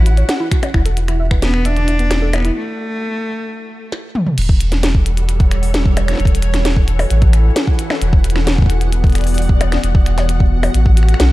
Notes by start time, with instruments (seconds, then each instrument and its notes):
Already playing: sub bass A1, synth texture F#4 F#5
0.06 synth pluck E4, closed hi-hat
0.17 synth pluck C#5, closed hi-hat
0.29 synth pluck F#5, finger snap, snare, closed hi-hat
0.40 synth pluck E4
0.52 synth pluck F#4, finger snap, kick, closed hi-hat
0.63 synth pluck C#4, closed hi-hat, percussion blips
0.74 sub bass E1, synth pluck E4, finger snap, kick
0.86 synth pluck A4, closed hi-hat
0.97 synth pluck E4, closed hi-hat
1.08 synth pluck E4, finger snap, closed hi-hat
1.20 synth pluck E5
1.31 synth pluck B4, finger snap, kick
1.42 cello B3, synth pluck D4, snare, closed hi-hat
1.54 synth pluck B4, finger snap
1.65 cello D4, synth pluck E5, closed hi-hat
1.77 synth pluck D4, closed hi-hat
1.88 synth pluck E4, closed hi-hat
1.99 synth pluck B3, closed hi-hat
2.11 synth pluck E4, finger snap, snare, closed hi-hat
2.22 synth pluck A4
2.33 cello B3, synth pluck E4, finger snap, closed hi-hat, percussion blips
2.36 finger snap
2.38 finger snap
2.40 finger snap
2.42 synth pluck E4, finger snap, closed hi-hat
2.56 cello A3
3.92 snare
4.15 mid tom
4.26 mid tom
4.38 sub bass E1, ambient pad G3, synth texture F#4 F#5, closed hi-hat, crash
4.42 closed hi-hat
4.49 ambient pad A4, kick
4.61 closed hi-hat
4.72 snare, closed hi-hat
4.83 snare, closed hi-hat
4.95 kick
5.06 ambient pad C#5, closed hi-hat
5.17 closed hi-hat
5.29 closed hi-hat
5.40 kick, closed hi-hat
5.51 finger snap, closed hi-hat
5.63 open hi-hat
5.74 snare, closed hi-hat
5.86 kick
5.97 closed hi-hat, percussion blips
6.08 finger snap, snare, closed hi-hat
6.11 snare
6.13 snare
6.15 snare
6.17 sub bass E1, ambient pad E3, snare, closed hi-hat
6.25 kick, closed hi-hat
6.35 closed hi-hat
6.42 finger snap, closed hi-hat
6.54 finger snap, snare, closed hi-hat
6.65 snare, closed hi-hat
6.72 ambient pad E4
6.76 kick
6.88 closed hi-hat
6.99 open hi-hat, percussion blips
7.10 sub bass A1, closed hi-hat
7.22 kick, closed hi-hat
7.33 finger snap, closed hi-hat
7.56 snare, closed hi-hat
7.67 kick
7.79 closed hi-hat
7.90 finger snap, snare, percussion blips
8.01 sub bass E1, closed hi-hat
8.13 kick
8.24 closed hi-hat
8.30 closed hi-hat
8.36 ambient pad B3, finger snap, snare
8.47 snare, closed hi-hat
8.58 kick
8.62 kick
8.66 kick, closed hi-hat
8.72 ambient pad G3
8.81 ambient pad D5, closed hi-hat
8.93 closed hi-hat
9.04 kick, closed hi-hat
9.07 closed hi-hat
9.10 closed hi-hat
9.12 finger snap, closed hi-hat
9.15 closed hi-hat
9.18 closed hi-hat
9.21 closed hi-hat
9.24 closed hi-hat, open hi-hat
9.34 closed hi-hat, open hi-hat
9.42 open hi-hat
9.49 kick
9.61 closed hi-hat, percussion blips
9.72 finger snap, snare, closed hi-hat
9.83 sub bass E1, closed hi-hat
9.95 kick
10.06 finger snap, closed hi-hat
10.18 snare, closed hi-hat
10.29 closed hi-hat
10.40 kick
10.63 ambient pad F#4 A4, open hi-hat, percussion blips
10.74 sub bass A1, closed hi-hat
10.86 kick
10.97 finger snap, closed hi-hat
11.03 finger snap
11.09 finger snap, closed hi-hat
11.14 finger snap
11.20 sub bass B1, snare, closed hi-hat